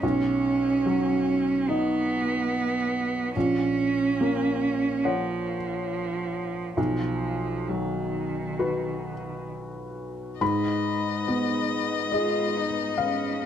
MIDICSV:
0, 0, Header, 1, 5, 480
1, 0, Start_track
1, 0, Tempo, 831025
1, 16, Time_signature, 4, 2, 24, 8
1, 1935, Tempo, 846262
1, 3375, Tempo, 903614
1, 5775, Tempo, 857143
1, 7483, End_track
2, 0, Start_track
2, 0, Title_t, "Violin"
2, 0, Program_c, 0, 40
2, 5775, Note_on_c, 0, 75, 37
2, 7483, Note_off_c, 0, 75, 0
2, 7483, End_track
3, 0, Start_track
3, 0, Title_t, "Felt piano"
3, 0, Program_c, 1, 0
3, 0, Control_c, 1, 64, 127
3, 16, Note_on_c, 1, 35, 44
3, 26, Control_c, 1, 64, 0
3, 109, Control_c, 1, 64, 127
3, 496, Note_on_c, 1, 54, 38
3, 973, Note_on_c, 1, 63, 34
3, 978, Note_on_c, 1, 75, 34
3, 1260, Note_off_c, 1, 54, 0
3, 1913, Note_off_c, 1, 35, 0
3, 1913, Note_off_c, 1, 63, 0
3, 1915, Note_off_c, 1, 75, 0
3, 1943, Note_on_c, 1, 34, 39
3, 1946, Control_c, 1, 64, 0
3, 2037, Control_c, 1, 64, 127
3, 2422, Note_on_c, 1, 58, 34
3, 2898, Note_on_c, 1, 78, 31
3, 2899, Note_on_c, 1, 73, 31
3, 3184, Note_off_c, 1, 58, 0
3, 3826, Note_off_c, 1, 34, 0
3, 3826, Note_off_c, 1, 78, 0
3, 3827, Note_off_c, 1, 73, 0
3, 3844, Note_on_c, 1, 35, 36
3, 3855, Control_c, 1, 64, 0
3, 3936, Control_c, 1, 64, 127
3, 4332, Note_on_c, 1, 54, 31
3, 4811, Note_on_c, 1, 66, 28
3, 4814, Note_on_c, 1, 71, 30
3, 5100, Note_off_c, 1, 54, 0
3, 5755, Note_off_c, 1, 35, 0
3, 5756, Note_off_c, 1, 66, 0
3, 5757, Note_off_c, 1, 71, 0
3, 5777, Note_on_c, 1, 44, 41
3, 5778, Note_on_c, 1, 83, 57
3, 5786, Control_c, 1, 64, 0
3, 5894, Control_c, 1, 64, 127
3, 6264, Note_on_c, 1, 59, 35
3, 6717, Note_off_c, 1, 83, 0
3, 6733, Note_on_c, 1, 75, 50
3, 6744, Note_on_c, 1, 68, 29
3, 7030, Note_off_c, 1, 59, 0
3, 7193, Note_off_c, 1, 75, 0
3, 7214, Note_on_c, 1, 77, 53
3, 7483, Note_off_c, 1, 44, 0
3, 7483, Note_off_c, 1, 68, 0
3, 7483, Note_off_c, 1, 77, 0
3, 7483, End_track
4, 0, Start_track
4, 0, Title_t, "String section"
4, 0, Program_c, 2, 48
4, 5777, Note_on_c, 2, 63, 33
4, 5781, Note_on_c, 2, 56, 32
4, 5782, Note_on_c, 2, 71, 34
4, 7483, Note_off_c, 2, 56, 0
4, 7483, Note_off_c, 2, 63, 0
4, 7483, Note_off_c, 2, 71, 0
4, 7483, End_track
5, 0, Start_track
5, 0, Title_t, "Cello"
5, 0, Program_c, 3, 42
5, 17, Note_on_c, 3, 61, 66
5, 975, Note_on_c, 3, 59, 66
5, 983, Note_off_c, 3, 61, 0
5, 1937, Note_off_c, 3, 59, 0
5, 1941, Note_on_c, 3, 61, 68
5, 2890, Note_on_c, 3, 53, 53
5, 2898, Note_off_c, 3, 61, 0
5, 3844, Note_off_c, 3, 53, 0
5, 3849, Note_on_c, 3, 53, 46
5, 4332, Note_on_c, 3, 51, 43
5, 4340, Note_off_c, 3, 53, 0
5, 5294, Note_off_c, 3, 51, 0
5, 6743, Note_on_c, 3, 65, 39
5, 6985, Note_on_c, 3, 63, 35
5, 6994, Note_off_c, 3, 65, 0
5, 7217, Note_on_c, 3, 61, 40
5, 7225, Note_off_c, 3, 63, 0
5, 7458, Note_on_c, 3, 59, 41
5, 7467, Note_off_c, 3, 61, 0
5, 7483, Note_off_c, 3, 59, 0
5, 7483, End_track
0, 0, End_of_file